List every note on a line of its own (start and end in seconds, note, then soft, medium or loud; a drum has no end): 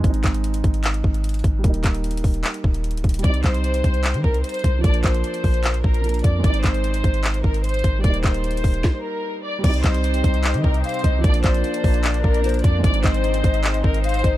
0.00 1.58 G#3 medium
0.04 0.23 G#1 loud
0.04 1.61 C4 medium
0.04 kick loud
0.04 closed hi-hat medium
0.10 1.64 D#4 medium
0.14 closed hi-hat medium
0.24 0.63 G#1 loud
0.24 kick loud
0.24 clap loud
0.24 closed hi-hat medium
0.34 closed hi-hat medium
0.44 closed hi-hat medium
0.54 closed hi-hat medium
0.64 1.02 G#1 loud
0.64 kick loud
0.64 closed hi-hat medium
0.74 closed hi-hat soft
0.84 clap loud
0.84 closed hi-hat medium
0.94 closed hi-hat medium
1.04 1.43 G#1 loud
1.04 kick medium
1.14 closed hi-hat soft
1.24 closed hi-hat medium
1.29 closed hi-hat medium
1.34 closed hi-hat medium
1.39 closed hi-hat soft
1.44 1.63 G#1 loud
1.44 kick loud
1.44 closed hi-hat medium
1.59 3.17 G3 medium
1.64 1.83 D#1 loud
1.64 3.21 A#3 medium
1.64 kick loud
1.64 closed hi-hat medium
1.69 3.24 D#4 medium
1.74 closed hi-hat medium
1.84 2.23 D#1 loud
1.84 kick loud
1.84 clap medium
1.84 closed hi-hat medium
1.94 closed hi-hat medium
2.04 closed hi-hat medium
2.11 closed hi-hat medium
2.17 closed hi-hat medium
2.24 2.43 D#1 loud
2.24 kick loud
2.24 open hi-hat medium
2.34 closed hi-hat soft
2.44 clap loud
2.44 closed hi-hat medium
2.54 closed hi-hat medium
2.64 2.96 D#1 loud
2.64 kick loud
2.74 closed hi-hat medium
2.84 closed hi-hat medium
2.91 3.04 D1 medium
2.91 closed hi-hat medium
2.97 closed hi-hat medium
3.04 3.23 D#1 loud
3.04 kick medium
3.04 closed hi-hat soft
3.09 closed hi-hat medium
3.14 closed hi-hat medium
3.19 4.78 G3 medium
3.19 closed hi-hat medium
3.24 3.43 C2 loud
3.24 4.81 C4 medium
3.24 3.41 D5 loud
3.24 kick loud
3.24 closed hi-hat medium
3.29 4.84 D#4 medium
3.34 closed hi-hat medium
3.44 3.83 C2 loud
3.44 4.20 C5 loud
3.44 kick loud
3.44 clap medium
3.44 closed hi-hat medium
3.54 closed hi-hat medium
3.64 closed hi-hat medium
3.74 closed hi-hat medium
3.84 4.16 C2 loud
3.84 kick loud
3.84 closed hi-hat medium
3.94 closed hi-hat soft
4.04 clap loud
4.04 closed hi-hat medium
4.14 4.24 D#3 loud
4.14 closed hi-hat medium
4.24 4.43 C2 loud
4.24 4.41 A#4 medium
4.24 kick medium
4.34 closed hi-hat medium
4.44 4.82 C5 medium
4.44 closed hi-hat medium
4.49 closed hi-hat medium
4.54 closed hi-hat medium
4.59 closed hi-hat soft
4.64 4.83 C2 loud
4.64 kick medium
4.64 closed hi-hat medium
4.79 5.99 F3 medium
4.84 5.03 A#1 loud
4.84 6.02 A#3 medium
4.84 5.01 D5 loud
4.84 kick loud
4.84 closed hi-hat medium
4.89 6.04 D4 medium
4.94 closed hi-hat medium
5.04 5.23 A#1 loud
5.04 5.80 C5 medium
5.04 kick loud
5.04 clap loud
5.04 closed hi-hat medium
5.14 closed hi-hat medium
5.24 closed hi-hat medium
5.34 closed hi-hat medium
5.44 5.82 A#1 loud
5.44 kick loud
5.44 open hi-hat medium
5.54 closed hi-hat soft
5.64 clap loud
5.64 closed hi-hat medium
5.74 closed hi-hat medium
5.84 6.23 A#1 loud
5.84 6.22 A#4 medium
5.84 kick loud
5.94 closed hi-hat soft
6.02 6.43 F3 medium
6.02 6.44 A#3 soft
6.02 closed hi-hat medium
6.07 6.45 D4 medium
6.07 closed hi-hat medium
6.14 closed hi-hat medium
6.19 closed hi-hat soft
6.24 6.43 F2 loud
6.24 6.41 D5 medium
6.24 kick loud
6.24 closed hi-hat medium
6.39 7.98 G#3 medium
6.44 6.63 G#1 loud
6.44 8.01 C4 medium
6.44 6.61 D5 loud
6.44 kick loud
6.44 closed hi-hat medium
6.50 8.04 D#4 medium
6.54 closed hi-hat medium
6.64 7.03 G#1 loud
6.64 7.40 C5 medium
6.64 kick loud
6.64 clap medium
6.64 closed hi-hat medium
6.74 closed hi-hat medium
6.84 closed hi-hat medium
6.94 closed hi-hat medium
7.04 7.43 G#1 loud
7.04 kick loud
7.04 closed hi-hat medium
7.14 closed hi-hat soft
7.24 clap loud
7.24 closed hi-hat medium
7.34 closed hi-hat medium
7.44 7.83 G#1 loud
7.44 7.61 A#4 medium
7.44 kick medium
7.54 closed hi-hat soft
7.64 8.02 C5 loud
7.64 closed hi-hat medium
7.69 closed hi-hat medium
7.74 closed hi-hat soft
7.79 closed hi-hat soft
7.84 8.03 G#1 loud
7.84 kick medium
7.84 closed hi-hat medium
7.99 9.57 G3 medium
8.04 8.23 D#1 loud
8.04 9.61 A#3 medium
8.04 8.21 D5 loud
8.04 kick loud
8.04 closed hi-hat medium
8.09 9.64 D#4 medium
8.14 closed hi-hat medium
8.24 8.63 D#1 loud
8.24 9.00 C5 medium
8.24 kick medium
8.24 clap loud
8.24 closed hi-hat medium
8.34 closed hi-hat medium
8.44 closed hi-hat medium
8.51 closed hi-hat medium
8.57 closed hi-hat medium
8.64 8.83 D#1 loud
8.64 kick loud
8.64 open hi-hat medium
8.74 closed hi-hat soft
8.84 kick loud
8.84 snare medium
9.04 9.42 A#4 medium
9.44 9.61 D5 medium
9.59 11.18 G3 medium
9.64 9.83 C2 loud
9.64 11.23 C3 medium
9.64 11.21 C4 medium
9.64 11.23 C4 medium
9.64 11.23 D#4 medium
9.64 11.23 G4 medium
9.64 9.81 D5 loud
9.64 kick loud
9.64 closed hi-hat medium
9.64 crash loud
9.69 11.24 D#4 medium
9.74 closed hi-hat medium
9.84 10.23 C2 loud
9.84 10.60 C5 loud
9.84 10.80 D#5 medium
9.84 kick loud
9.84 clap loud
9.84 closed hi-hat medium
9.94 closed hi-hat medium
10.04 closed hi-hat medium
10.14 closed hi-hat medium
10.24 10.56 C2 loud
10.24 kick loud
10.24 closed hi-hat medium
10.34 closed hi-hat medium
10.44 clap loud
10.44 closed hi-hat medium
10.54 10.64 D#3 loud
10.54 closed hi-hat medium
10.64 10.83 C2 loud
10.64 10.81 A#4 medium
10.64 kick medium
10.74 closed hi-hat medium
10.84 11.22 C5 medium
10.84 11.03 F5 medium
10.84 closed hi-hat medium
10.89 closed hi-hat medium
10.94 closed hi-hat medium
10.99 closed hi-hat soft
11.04 11.23 C2 loud
11.04 11.23 D#5 medium
11.04 kick loud
11.04 closed hi-hat medium
11.19 12.39 F3 medium
11.24 11.43 A#1 loud
11.24 12.83 F3 medium
11.24 12.42 A#3 medium
11.24 12.83 A#3 medium
11.24 12.83 D4 loud
11.24 11.41 D5 loud
11.24 kick loud
11.24 closed hi-hat medium
11.29 12.44 D4 medium
11.34 closed hi-hat medium
11.44 11.63 A#1 loud
11.44 12.20 C5 medium
11.44 12.40 D5 medium
11.44 kick loud
11.44 clap loud
11.44 closed hi-hat medium
11.54 closed hi-hat medium
11.64 closed hi-hat medium
11.74 closed hi-hat medium
11.84 12.22 A#1 loud
11.84 kick loud
11.84 open hi-hat medium
11.94 closed hi-hat soft
12.04 clap loud
12.04 closed hi-hat medium
12.14 closed hi-hat medium
12.24 12.62 A#1 loud
12.24 12.62 A#4 medium
12.24 kick loud
12.34 closed hi-hat medium
12.42 12.83 F3 medium
12.42 12.84 A#3 soft
12.42 12.63 C5 medium
12.42 closed hi-hat medium
12.47 12.85 D4 medium
12.47 closed hi-hat medium
12.54 closed hi-hat medium
12.59 closed hi-hat soft
12.64 12.83 F2 loud
12.64 12.83 D5 medium
12.64 12.81 D5 medium
12.64 kick loud
12.64 closed hi-hat medium
12.79 14.37 G#3 medium
12.84 13.03 G#1 loud
12.84 14.37 G#3 medium
12.84 14.37 C4 medium
12.84 14.37 D#4 loud
12.84 13.01 D5 loud
12.84 kick loud
12.84 closed hi-hat medium
12.89 14.37 D#4 medium
12.94 closed hi-hat medium
13.04 13.43 G#1 loud
13.04 13.80 C5 medium
13.04 14.00 D#5 medium
13.04 kick loud
13.04 clap loud
13.04 closed hi-hat medium
13.14 closed hi-hat medium
13.24 closed hi-hat medium
13.34 closed hi-hat medium
13.44 13.82 G#1 loud
13.44 kick loud
13.44 closed hi-hat medium
13.54 closed hi-hat soft
13.64 clap loud
13.64 closed hi-hat medium
13.74 closed hi-hat medium
13.84 14.23 G#1 loud
13.84 14.01 A#4 medium
13.84 kick loud
13.94 closed hi-hat medium
14.04 14.37 C5 loud
14.04 14.23 F5 loud
14.04 closed hi-hat medium
14.09 closed hi-hat medium
14.14 closed hi-hat medium
14.19 closed hi-hat soft
14.24 14.37 G#1 loud
14.24 14.37 D#5 medium
14.24 kick loud
14.24 closed hi-hat medium